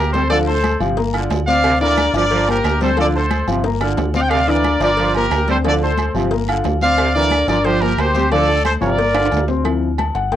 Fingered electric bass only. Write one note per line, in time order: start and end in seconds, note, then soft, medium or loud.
0.00 0.75 D2 medium
0.80 1.27 G1 loud
1.30 2.08 D2 medium
2.13 2.60 G1 loud
2.64 3.42 D2 loud
3.47 3.94 G1 loud
3.97 4.75 D2 medium
4.80 5.27 G1 medium
5.30 6.08 D2 loud
6.14 6.61 G1 medium
6.65 7.42 D2 loud
7.47 7.94 G1 medium
7.97 8.75 D2 loud
8.81 9.28 G1 medium
9.32 10.10 D2 loud
10.15 10.36 G1 medium